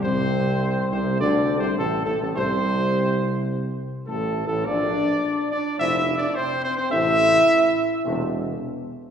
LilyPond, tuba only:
\new Staff \with { instrumentName = "Tuba" } { \clef bass \time 4/4 \key a \phrygian \tempo 4 = 105 c,4. c,8 \tuplet 3/2 { d,4 c,8 } a,,8 a,,16 a,,16 | c,2~ c,8 r8 \tuplet 3/2 { a,,4 a,,8 } | bes,,4 r4 f,,4 r4 | a,,4 r4 e,,4 r4 | }